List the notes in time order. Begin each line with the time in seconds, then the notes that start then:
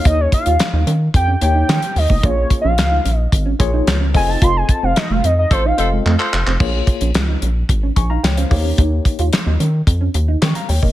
Already playing: A#3 D#4 G4 C#5
0.05 D#2 D#4 D#5, kick, closed hi-hat
0.21 C#5
0.32 F5, muted clean electric guitar stroke, kick, closed hi-hat
0.46 D#2 F4, closed hi-hat
0.59 snare, clap, closed hi-hat
0.73 D#2 D#4
0.87 D#3 C#4, closed hi-hat
1.14 F2 G5, kick, closed hi-hat
1.28 C#4
1.41 D#2 A#3 D#4 G4 C#5 G5, muted clean electric guitar stroke, closed hi-hat
1.55 D#4
1.69 D#3 C#4, snare, clap, closed hi-hat
1.82 muted clean electric guitar stroke, closed hi-hat
1.96 D#2 D#5, open hi-hat
2.09 F1 A#3, kick
2.23 A#1 A#3 F4 G#4 C#5, kick, closed hi-hat
2.50 muted clean electric guitar stroke, kick, closed hi-hat
2.61 A#1 C#4 F5
2.78 C#2, snare, clap, closed hi-hat
2.91 D#4
3.05 A#1 C#4, closed hi-hat
3.17 D#5
3.32 G#1, kick, closed hi-hat
3.46 C#4
3.59 A#1 A#3 F4 G#4 C#5, muted clean electric guitar stroke, kick, closed hi-hat
3.73 D#4
3.87 C#2, snare, clap, closed hi-hat
4.01 C#4
4.14 F1 C4 F4 A4 D#5 G#5, muted clean electric guitar stroke, kick, open hi-hat
4.28 D#4 A5
4.42 F1 F4 C6, kick, closed hi-hat
4.57 G#5
4.69 A5, muted clean electric guitar stroke, kick, closed hi-hat
4.83 F1 C4 F5
4.96 D#5, snare, clap, closed hi-hat
5.10 F1 A3 F5
5.24 F2 C4 D#5, closed hi-hat
5.39 D#5
5.51 A1 F4 A4 C5, kick, closed hi-hat
5.65 D#4 F5
5.78 F1 C4 F4 A4 C5 D#5, muted clean electric guitar stroke, closed hi-hat
5.92 G#3
6.06 F2 A3, clap
6.19 F4 A4 C5, muted clean electric guitar stroke, clap
6.33 F1, clap
6.47 F1 C4, clap
6.60 A#1 A#3 F4 G#4 C#5, kick, crash
6.87 muted clean electric guitar stroke, kick, closed hi-hat
7.01 A#1 C#4, closed hi-hat
7.15 C#2, snare, clap, closed hi-hat
7.28 D#4
7.42 A#1 C#4, closed hi-hat
7.69 G#1, kick, closed hi-hat
7.83 C#4
7.96 A#1 G#5 C#6, muted clean electric guitar stroke, kick, closed hi-hat
8.10 D#4 F5 A#5
8.23 C#2 C#5 G5, snare, clap, closed hi-hat
8.37 C#4 C5 F5, closed hi-hat
8.50 D#2 A#3 D#4 G4 C#5, kick, open hi-hat
8.65 C#4
8.78 D#2 D#4, kick, closed hi-hat
9.05 muted clean electric guitar stroke, kick, closed hi-hat
9.19 D#2 F4, closed hi-hat
9.33 muted clean electric guitar stroke, snare, clap, closed hi-hat
9.46 D#2 D#4
9.60 D#3 C#4, closed hi-hat
9.87 F2, kick, closed hi-hat
10.01 C#4
10.14 D#2, muted clean electric guitar stroke, closed hi-hat
10.28 D#4
10.42 D#3 C#4 G5 C#6, snare, clap, closed hi-hat
10.55 F5 A#5, muted clean electric guitar stroke, closed hi-hat
10.69 D#2 C#5 G5, open hi-hat
10.82 F1 A#3 A#4 D#5, kick